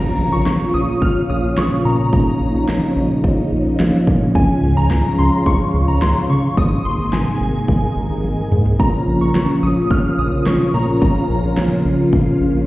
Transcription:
Already playing: string machine A#2 C#3 F3 C#4 F4, synth bell A#5, impact
0.19 analog synth bass A#1
0.32 analog synth bass A#1, synth bell C#6
0.46 analog synth bass A#1, snare
0.74 analog synth bass A#1, synth bell D#6
1.02 analog synth bass A#1, synth bell F6, kick
1.30 analog synth bass A#1, synth bell D#6
1.44 analog synth bass A#1
1.57 analog synth bass A#1, synth bell C#6, snare
1.85 analog synth bass A#2, synth bell A#5
2.13 analog synth bass A#1, string machine D#4, synth bell A#5, kick
2.41 analog synth bass A#1
2.55 analog synth bass A#1
2.69 analog synth bass A#1, snare
2.96 analog synth bass A#1
3.24 analog synth bass A#1, kick
3.52 analog synth bass A#1
3.66 analog synth bass A#1
3.80 analog synth bass A#1, snare
4.07 analog synth bass A#2, kick
4.35 analog synth bass C#2, string machine G#2 F4, synth bell G#5, kick
4.63 analog synth bass C#2
4.77 analog synth bass C#2, synth bell A#5
4.91 analog synth bass C#2, snare
5.18 analog synth bass C#2, synth bell C6
5.46 analog synth bass C#2, synth bell C#6, kick
5.74 analog synth bass C#2
5.88 analog synth bass C#2, synth bell A#5
6.02 analog synth bass C#2, synth bell C6, snare
6.30 analog synth bass C#3, synth bell C#6
6.57 analog synth bass G#1, string machine C3 D#3 G#3 A#3 D#4, synth bell D#6, kick
6.85 analog synth bass G#1, synth bell C6
6.99 analog synth bass G#1
7.13 analog synth bass G#1, synth bell G#5, snare
7.41 analog synth bass G#1
7.68 analog synth bass G#1, kick
7.96 analog synth bass G#1
8.10 analog synth bass G#1
8.24 analog synth bass G#1, high tom
8.52 analog synth bass G#2, mid tom
8.66 floor tom
8.80 analog synth bass A#1, string machine A#2 C#3 F3 C#4 F4, synth bell A#5, kick
9.07 analog synth bass A#1
9.21 analog synth bass A#1, synth bell C#6
9.35 analog synth bass A#1, snare
9.63 analog synth bass A#1, synth bell D#6
9.91 analog synth bass A#1, synth bell F6, kick
10.18 analog synth bass A#1, synth bell D#6
10.32 analog synth bass A#1
10.46 analog synth bass A#1, synth bell C#6, snare
10.74 analog synth bass A#2, synth bell A#5
11.02 analog synth bass A#1, synth bell A#5, kick
11.30 analog synth bass A#1
11.44 analog synth bass A#1
11.57 analog synth bass A#1, snare
11.85 analog synth bass A#1
12.13 analog synth bass A#1, kick
12.41 analog synth bass A#1
12.55 analog synth bass A#1

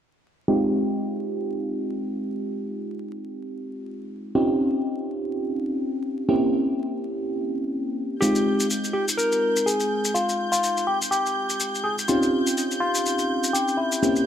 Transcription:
0.48 fm electric piano G#3 C4 D#4 F4 G4
4.35 fm electric piano C4 C#4 D#4 F4 G4
6.29 fm electric piano A#3 C4 C#4 E4 G4
8.21 fm electric piano G#3 C4 D#4 F4, tine electric piano G4, violin section G6, maracas
8.35 maracas
8.60 maracas
8.70 maracas
8.84 maracas
8.93 tine electric piano G4
9.08 maracas
9.17 tine electric piano A#4, maracas
9.32 maracas
9.56 maracas
9.66 tine electric piano G#4, maracas
9.80 maracas
10.05 maracas
10.14 tine electric piano F4, maracas
10.29 maracas
10.52 tine electric piano F4, maracas
10.64 maracas
10.77 maracas
10.87 tine electric piano G4
11.02 maracas
11.11 tine electric piano G4, maracas
11.26 maracas
11.50 maracas
11.60 maracas
11.75 maracas
11.84 tine electric piano G#4
11.99 maracas
12.08 fm electric piano C4 C#4 D#4 F4 G4, tine electric piano F4, maracas
12.23 maracas
12.47 maracas
12.58 maracas
12.71 maracas
12.80 tine electric piano F4
12.95 maracas
13.06 maracas
13.19 maracas
13.44 maracas
13.53 tine electric piano G4, maracas
13.68 maracas
13.77 tine electric piano E4
13.92 maracas
14.03 fm electric piano A#3 C4 C#4 E4 G4, maracas
14.16 maracas

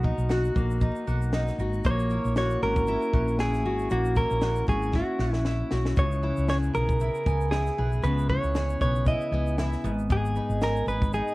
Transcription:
Already playing: fretless electric bass B1, steel-string acoustic guitar A#3 F#4, mandolin B3 D#4 F#5, clean electric guitar F#4
0.03 steel-string acoustic guitar D#4, mandolin A#4, kick
0.18 fretless electric bass B1, shaker
0.29 steel-string acoustic guitar F#4, mandolin F#5, snare, shaker
0.44 shaker
0.55 fretless electric bass A#1, steel-string acoustic guitar A#3, mandolin A#4, kick, shaker
0.71 shaker
0.81 mandolin D#4, steel-string acoustic guitar D#4, kick, shaker
0.96 shaker
1.07 fretless electric bass B1, steel-string acoustic guitar A#3, mandolin F#5, shaker
1.22 shaker
1.33 mandolin D#4, steel-string acoustic guitar D#4, snare, shaker
1.47 snare, shaker
1.58 fretless electric bass G#1, steel-string acoustic guitar F#4, mandolin A#4, shaker
1.73 shaker
1.84 fretless electric bass A#1, steel-string acoustic guitar A#3, mandolin A#3, clean electric guitar C#5, kick, shaker
1.99 shaker
2.10 steel-string acoustic guitar E4, mandolin C#5, shaker
2.25 fretless electric bass A#1, shaker
2.36 steel-string acoustic guitar F#4, clean electric guitar C#5, mandolin F#5, snare, shaker
2.50 shaker
2.62 fretless electric bass G#1, steel-string acoustic guitar C#4, clean electric guitar A#4, mandolin C#5
2.76 kick, shaker
2.87 mandolin E4, steel-string acoustic guitar E4, shaker
3.02 shaker
3.13 fretless electric bass A#1, steel-string acoustic guitar C#4, mandolin F#5, kick
3.28 shaker
3.39 steel-string acoustic guitar E4, mandolin E4, clean electric guitar G#4, snare, shaker
3.53 snare, shaker
3.65 fretless electric bass G#1, steel-string acoustic guitar F#4, mandolin C#5
3.79 shaker
3.90 fretless electric bass A#1, steel-string acoustic guitar A#3, mandolin A#3, clean electric guitar F#4, shaker
4.05 shaker
4.16 steel-string acoustic guitar E4, clean electric guitar A#4, mandolin C#5, kick, shaker
4.31 fretless electric bass A#1, shaker
4.42 steel-string acoustic guitar F#4, mandolin F#5, snare, shaker
4.56 shaker
4.68 fretless electric bass G#1, steel-string acoustic guitar C#4, clean electric guitar G#4, mandolin C#5, kick, shaker
4.83 shaker
4.93 steel-string acoustic guitar E4, mandolin E4, clean electric guitar F#4, kick, snare
5.19 fretless electric bass A#1, steel-string acoustic guitar C#4, mandolin F#5, snare
5.33 snare
5.45 steel-string acoustic guitar E4, mandolin E4, snare
5.71 fretless electric bass B1, steel-string acoustic guitar F#4, mandolin C#5, snare
5.85 snare
5.97 fretless electric bass C#2, steel-string acoustic guitar C#3, mandolin B3, clean electric guitar C#5, kick, shaker
6.12 shaker
6.23 steel-string acoustic guitar E4, mandolin B4
6.37 fretless electric bass C#2, shaker
6.48 steel-string acoustic guitar G#4, clean electric guitar C#5, mandolin G#5, snare, shaker
6.63 shaker
6.74 fretless electric bass B1, steel-string acoustic guitar B3, clean electric guitar A#4, shaker
6.89 kick, shaker
7.00 steel-string acoustic guitar E4, mandolin E4, shaker
7.15 shaker
7.26 fretless electric bass C#2, steel-string acoustic guitar B3, mandolin G#5, kick, shaker
7.41 shaker
7.51 steel-string acoustic guitar E4, mandolin E4, clean electric guitar G#4, snare, shaker
7.67 snare, shaker
7.78 fretless electric bass B1, steel-string acoustic guitar G#4, mandolin B4
7.92 shaker
8.03 fretless electric bass C#2, steel-string acoustic guitar C#3, mandolin B3, clean electric guitar B4, shaker
8.18 shaker
8.29 steel-string acoustic guitar E4, mandolin B4, clean electric guitar C#5, kick
8.43 fretless electric bass C#2, shaker
8.55 steel-string acoustic guitar G#4, mandolin G#5, snare, shaker
8.69 shaker
8.81 fretless electric bass B1, steel-string acoustic guitar B3, mandolin B4, clean electric guitar C#5, kick, shaker
8.95 shaker
9.06 mandolin E4, steel-string acoustic guitar E4, clean electric guitar D#5, kick, shaker
9.21 shaker
9.32 fretless electric bass C#2, steel-string acoustic guitar B3, mandolin G#5
9.47 shaker
9.58 mandolin E4, steel-string acoustic guitar E4, snare, shaker
9.73 snare, shaker
9.84 fretless electric bass G#1, steel-string acoustic guitar G#2, mandolin B3, shaker
9.99 shaker
10.10 steel-string acoustic guitar G#2, mandolin B3, clean electric guitar G#4, kick, shaker
10.25 shaker
10.36 steel-string acoustic guitar D#4, mandolin B4, shaker
10.50 fretless electric bass G#1, shaker
10.62 steel-string acoustic guitar G#4, clean electric guitar A#4, mandolin G#5, snare, shaker
10.76 shaker
10.87 fretless electric bass G#1, steel-string acoustic guitar B3, mandolin B4, clean electric guitar B4, shaker
11.02 kick, shaker
11.13 mandolin D#4, steel-string acoustic guitar D#4, clean electric guitar G#4, shaker
11.28 shaker

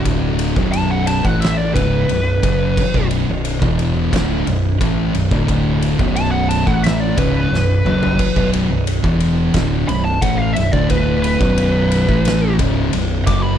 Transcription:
Already playing: fingered electric bass D1, distorted electric guitar D2 A2 D3
0.05 kick, ride
0.39 ride
0.56 fingered electric bass B0, distorted electric guitar B1 F#2 B2, kick
0.72 lead electric guitar A5, ride
0.91 lead electric guitar F#5
1.06 lead electric guitar A5, ride
1.24 fingered electric bass A1, distorted electric guitar A2 E3 A3, lead electric guitar F#5, kick
1.41 lead electric guitar E5, ride
1.45 snare
1.57 lead electric guitar D5
1.75 fingered electric bass C#1, distorted electric guitar C#2 G#2 C#3, lead electric guitar B4, kick, ride
2.09 fingered electric bass B0, distorted electric guitar B1 F#2, ride
2.43 fingered electric bass F#1, distorted electric guitar F#2 C#3 F#3, kick, ride
2.77 kick, crash
2.94 fingered electric bass B0, distorted electric guitar B1 F#2 B2, kick
3.11 ride
3.28 fingered electric bass B0, distorted electric guitar B1 F#2
3.45 ride
3.62 fingered electric bass E1, distorted electric guitar E2 B2 E3, kick
3.79 ride
4.12 fingered electric bass D1, distorted electric guitar D2 A2 D3, kick, snare, ride
4.47 fingered electric bass B0, distorted electric guitar B1 F#2, ride
4.80 fingered electric bass A1, distorted electric guitar A2 E3 A3, kick, ride
5.14 fingered electric bass B0, distorted electric guitar B1 F#2, ride
5.31 fingered electric bass D1, distorted electric guitar D2 A2 D3, kick
5.48 kick, ride
5.82 ride
5.99 fingered electric bass B0, distorted electric guitar B1 F#2 B2, kick
6.16 lead electric guitar A5, ride
6.31 lead electric guitar F#5
6.48 lead electric guitar A5, ride
6.67 fingered electric bass A1, distorted electric guitar A2 E3 A3, lead electric guitar F#5, kick
6.84 lead electric guitar E5, snare, ride
7.00 lead electric guitar D5
7.18 fingered electric bass C#1, distorted electric guitar C#2 G#2 C#3, lead electric guitar B4, kick, ride
7.51 fingered electric bass B0, distorted electric guitar B1 F#2, snare
7.85 fingered electric bass F#1, distorted electric guitar F#2 C#3 F#3, mid tom
8.03 floor tom
8.19 kick, crash
8.36 fingered electric bass B0, distorted electric guitar B1 F#2 B2, kick
8.53 ride
8.70 fingered electric bass B0, distorted electric guitar B1 F#2
8.87 ride
9.04 fingered electric bass E1, distorted electric guitar E2 B2 E3, kick
9.20 ride
9.54 fingered electric bass D1, distorted electric guitar D2 A2 D3, kick, snare, ride
9.88 fingered electric bass B0, distorted electric guitar B1 F#2, lead electric guitar B5, ride
10.05 lead electric guitar A5
10.21 fingered electric bass A1, distorted electric guitar A2 E3 A3, lead electric guitar F#5, kick, ride
10.38 lead electric guitar F5
10.54 fingered electric bass B0, distorted electric guitar B1, lead electric guitar E5, ride
10.58 distorted electric guitar F#2, snare
10.72 fingered electric bass D1, distorted electric guitar D2 A2 D3, lead electric guitar D5, kick
10.90 lead electric guitar B4, kick, ride
11.22 lead electric guitar B4, ride
11.41 fingered electric bass B0, distorted electric guitar B1 F#2 B2, kick
11.58 ride
11.91 ride
12.08 fingered electric bass A1, distorted electric guitar A2 E3 A3, kick
12.25 snare, ride
12.58 fingered electric bass C#1, distorted electric guitar C#2 G#2 C#3, kick, ride
12.93 fingered electric bass B0, distorted electric guitar B1 F#2, ride
13.27 fingered electric bass F#1, distorted electric guitar F#2 C#3 F#3, lead electric guitar D6, kick, ride
13.43 lead electric guitar B5

